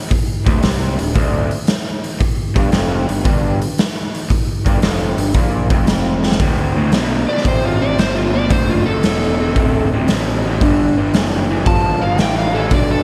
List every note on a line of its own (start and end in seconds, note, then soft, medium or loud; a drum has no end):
0.11 muted overdriven electric guitar stroke medium
0.11 muted picked electric bass stroke soft
0.11 kick loud
0.11 open hi-hat medium
0.46 0.62 D1 medium
0.46 0.61 D2 medium
0.46 kick loud
0.46 open hi-hat medium
0.62 0.97 C2 medium
0.62 0.97 C3 medium
0.62 snare loud
0.62 open hi-hat medium
0.98 1.15 D1 medium
0.98 1.12 D2 medium
0.98 open hi-hat medium
1.15 1.49 D1 medium
1.15 1.50 D2 loud
1.15 kick medium
1.15 open hi-hat medium
1.51 open hi-hat medium
1.67 snare loud
1.67 open hi-hat medium
2.04 open hi-hat medium
2.20 muted picked electric bass stroke soft
2.20 muted overdriven electric guitar stroke medium
2.20 kick loud
2.20 open hi-hat medium
2.55 2.72 G1 medium
2.55 2.72 G2 loud
2.55 kick loud
2.55 open hi-hat medium
2.72 3.06 F1 medium
2.72 3.07 F2 medium
2.72 snare loud
2.72 open hi-hat medium
3.08 3.24 G1 medium
3.08 3.22 G2 medium
3.08 open hi-hat medium
3.24 3.59 G1 loud
3.24 3.60 G2 medium
3.24 kick loud
3.24 open hi-hat medium
3.62 open hi-hat medium
3.78 snare loud
3.78 open hi-hat medium
4.15 open hi-hat medium
4.30 muted picked electric bass stroke soft
4.30 muted overdriven electric guitar stroke medium
4.30 kick loud
4.30 open hi-hat medium
4.66 4.82 G1 medium
4.66 4.82 G2 medium
4.66 kick loud
4.66 open hi-hat medium
4.82 5.16 F1 loud
4.82 5.17 F2 medium
4.82 snare loud
4.82 open hi-hat medium
5.17 5.34 G1 medium
5.17 5.32 G2 medium
5.17 open hi-hat medium
5.34 5.68 A#1 loud
5.34 5.69 A#2 loud
5.34 kick loud
5.34 open hi-hat medium
5.70 6.36 F1 medium
5.70 6.39 F2 loud
5.70 kick loud
5.70 open hi-hat medium
5.87 snare loud
5.87 open hi-hat medium
6.23 snare medium
6.32 snare medium
6.40 6.72 D2 medium
6.40 6.91 D2 medium
6.40 6.73 A2 medium
6.40 kick loud
6.40 open hi-hat medium
6.75 6.91 D2 medium
6.75 6.91 A2 medium
6.92 7.26 B1 medium
6.92 7.25 D2 medium
6.92 7.26 B2 medium
6.92 snare loud
6.92 open hi-hat medium
7.28 7.44 D2 medium
7.28 7.44 B2 medium
7.28 7.46 D5 medium
7.28 muted picked electric bass stroke soft
7.38 snare soft
7.45 7.97 A1 medium
7.45 7.78 D2 medium
7.45 7.78 C3 medium
7.45 7.64 C5 medium
7.45 kick loud
7.45 open hi-hat medium
7.65 7.81 F4 medium
7.81 7.97 D2 medium
7.81 7.97 C3 medium
7.81 7.98 D5 medium
7.97 8.49 G1 medium
7.97 8.31 D2 medium
7.97 8.31 B2 medium
7.97 8.16 C5 medium
7.97 snare loud
7.97 open hi-hat medium
8.15 8.33 F4 medium
8.34 8.49 D2 medium
8.34 8.50 B2 medium
8.34 8.51 D5 medium
8.50 9.02 F#1 medium
8.50 8.83 D2 medium
8.50 8.83 A2 medium
8.50 8.68 C5 medium
8.50 kick loud
8.50 open hi-hat medium
8.70 8.86 F4 medium
8.86 9.02 D2 medium
8.86 9.02 A2 medium
8.86 9.88 A4 loud
9.03 9.55 E1 medium
9.03 9.36 D2 medium
9.03 9.36 B2 medium
9.03 snare loud
9.03 open hi-hat medium
9.39 9.54 D2 medium
9.39 9.55 B2 medium
9.56 10.07 D1 medium
9.56 9.88 D2 medium
9.56 9.89 C3 medium
9.56 kick loud
9.56 open hi-hat medium
9.93 10.07 D2 medium
9.93 10.08 C3 medium
10.08 10.60 A1 medium
10.08 10.41 D2 medium
10.08 10.42 B2 medium
10.08 snare loud
10.08 open hi-hat medium
10.45 10.60 D2 medium
10.45 10.60 B2 medium
10.61 11.12 G1 medium
10.61 10.94 G2 medium
10.61 10.94 D3 medium
10.61 kick loud
10.61 open hi-hat medium
10.98 11.13 G2 medium
10.98 11.13 D3 medium
11.13 11.65 F#1 medium
11.13 11.46 G2 medium
11.13 11.46 E3 medium
11.13 snare loud
11.13 open hi-hat medium
11.50 11.65 G2 medium
11.50 11.65 E3 medium
11.66 12.17 G1 medium
11.66 11.99 G2 medium
11.66 11.99 F3 medium
11.66 12.01 A5 medium
11.66 kick loud
11.66 open hi-hat medium
12.02 12.18 G2 medium
12.02 12.18 F3 medium
12.02 12.19 F5 medium
12.18 12.70 A1 medium
12.18 12.51 G2 medium
12.18 12.52 E3 medium
12.18 12.37 G5 medium
12.18 snare loud
12.18 open hi-hat medium
12.39 12.55 F5 medium
12.55 12.70 G2 medium
12.55 12.70 E3 medium
12.55 12.71 A4 medium
12.71 13.03 B1 medium
12.71 13.03 G2 medium
12.71 13.03 D3 medium
12.71 12.90 D5 medium
12.71 kick loud
12.71 open hi-hat medium
12.91 13.03 A4 medium